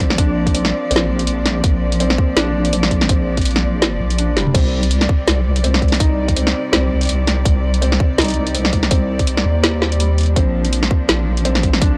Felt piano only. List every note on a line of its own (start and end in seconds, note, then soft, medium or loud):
0.00 0.54 C4 loud
0.18 0.53 D4 loud
0.54 0.89 C4 medium
0.91 1.08 C4 loud
2.00 2.18 C4 loud
2.36 2.71 D4 loud
2.73 3.08 C4 medium
3.09 3.26 C4 loud
4.18 4.36 D4 medium
4.36 4.48 G3 medium
4.54 4.72 C4 loud
5.64 5.81 C4 loud
6.00 6.35 D#4 loud
6.36 6.71 C4 medium
6.72 6.90 C4 loud
7.82 7.99 C4 loud
8.18 8.53 D#4 loud
8.55 8.89 C4 medium
8.91 9.08 C4 loud
10.00 10.17 G3 medium
10.36 10.54 C4 loud
11.45 11.63 C4 loud
11.81 11.98 D4 loud